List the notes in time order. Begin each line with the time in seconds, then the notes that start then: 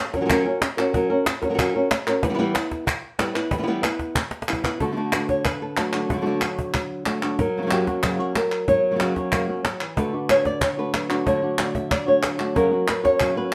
0.13 F#3 C#4 F#4 A#4, cajon bass, cajon slap
0.18 F#3 C#4 F#4 A#4
0.22 F#3 C#4 A#4
0.26 F#3 C#4 F#4 A#4, cajon bass, clap
0.31 F#4 A#4
0.45 C#4 F#4 A#4
0.62 muted nylon-string guitar stroke, cajon slap, clap
0.77 C#4 F#4 A#4, clap
0.93 F#3 C#4 F#4 A#4, cajon bass
1.10 C#4 F#4 A#4
1.26 muted nylon-string guitar stroke, cajon slap, clap
1.42 C#4 F#4 A#4, cajon bass, cajon slap
1.49 F#3 C#4 F#4 A#4
1.54 F#3 C#4 F#4 A#4
1.58 F#3 C#4 F#4 A#4, cajon bass, clap
1.75 C#4 F#4 A#4
1.91 muted nylon-string guitar stroke, cajon slap, clap
2.07 C#4 F#4 A#4, cajon slap, clap
2.22 E3 G3 B3 E4 B4, cajon bass
2.29 G3 B3 E4 B4
2.34 G3 B3 E4 B4
2.38 E3 G3 B3 E4 B4, cajon slap
2.54 B3 E4 B4, cajon slap, clap
2.71 cajon bass, cajon slap
2.86 muted nylon-string guitar stroke, cajon bass, clap
3.19 G3 B3 E4 B4, cajon slap, clap
3.35 B3 E4 B4, cajon slap, clap
3.51 E3 G3 B3 E4 B4, cajon bass
3.58 G3 B3 E4 B4
3.63 G3 B3 E4 B4
3.67 E3 G3 B3 E4 B4
3.83 B3 E4 B4, cajon slap, clap
3.99 cajon bass, cajon slap
4.15 muted nylon-string guitar stroke, cajon bass, clap
4.31 cajon slap
4.42 cajon slap
4.48 G3 B3 E4 B4, clap
4.53 cajon bass
4.64 B3 E4 B4, cajon bass, clap
4.80 D3 A3 D4 F#4 A4, cajon bass
4.87 D3 A3 D4 F#4
4.92 D3 A3 D4 F#4
4.96 D3 A3 D4 F#4
5.12 A3 D4 F#4 B4, cajon slap, clap
5.29 C#5, cajon bass
5.45 B4, muted nylon-string guitar stroke, cajon bass, clap
5.62 A4
5.77 D3 F#3 A3 D4 F#4 A4, cajon slap, clap
5.93 A3 D4 F#4, cajon slap, clap
6.09 D3 A3 D4 F#4, cajon bass
6.13 D3 D4 F#4
6.17 A3 D4 F#4
6.21 D3 A3 D4 F#4
6.26 D3 A3 D4 F#4, cajon slap
6.41 A3 D4 F#4, cajon slap, clap
6.59 cajon bass
6.74 muted nylon-string guitar stroke, cajon bass, clap
7.06 D3 F#3 A3 D4 F#4, cajon slap, clap
7.22 A3 D4 F#4, cajon slap, clap
7.39 F#3 A#4, muted nylon-string guitar stroke, cajon bass
7.55 C#3 F#3 A#3 C#4 F#4, cajon slap
7.62 C#3 F#3 A#3 C#4 F#4
7.66 C#3 F#3 A#3 C#4 F#4
7.71 F#2 C#3 F#3 A#3 C#4 F#4 G4, cajon slap, clap
7.87 F#3 A#3 C#4 F#4, cajon bass, cajon slap
8.03 F#2 C#3 F#3 A#3 C#4 F#4 G4, cajon bass, clap
8.19 F#3 A#3 C#4 F#4 A#4
8.35 F#4 A#4, muted nylon-string guitar stroke, cajon slap, clap
8.52 cajon slap, clap
8.68 F#3 C#5, muted nylon-string guitar stroke, cajon bass
8.91 C#3 F#3 A#3 C#4 F#4
8.95 C#3 F#3 A#3 C#4 F#4
9.00 F#2 C#3 F#3 A#3 C#4 F#4, cajon slap, clap
9.16 F#3 A#3 C#4 F#4, cajon bass, cajon slap
9.32 F#2 C#3 F#3 A#3 C#4 F#4, cajon bass, clap
9.48 F#3 A#3 C#4 F#4
9.65 F#3, muted nylon-string guitar stroke, cajon slap, clap
9.81 E3, clap
9.96 D3 A3 D4 F#4 B4, cajon bass
10.13 A3 D4 F#4
10.29 D3 A3 C#5, cajon slap, clap
10.45 D5, cajon bass, cajon slap
10.61 C#5, muted nylon-string guitar stroke, cajon bass, clap
10.77 A3 D4 F#4 B4
10.94 F#3, cajon slap, clap
11.09 A3 D4 F#4, cajon slap, clap
11.26 D3 A3 D4 F#4 C#5, cajon bass
11.42 A3 D4 F#4
11.58 D3 A3 D4 F#4 D5, cajon slap, clap
11.75 E5, cajon bass
11.91 D5, muted nylon-string guitar stroke, cajon bass, clap
12.06 A3 D4 F#4 C#5
12.23 F#3, cajon slap, clap
12.39 A3 D4 F#4, cajon slap, clap
12.55 F#2 C#3 F#3 A#3 C#4 F#4 A#4, cajon bass
12.71 F#3 A#3 C#4 F#4, cajon slap
12.88 B4, muted nylon-string guitar stroke, cajon slap, clap
13.04 F#3 A#3 C#4 F#4 C#5, cajon bass, cajon slap
13.20 F#2 C#3 F#3 A#3 C#4 F#4, cajon bass, clap
13.36 F#3 A#3 C#4 F#4 B4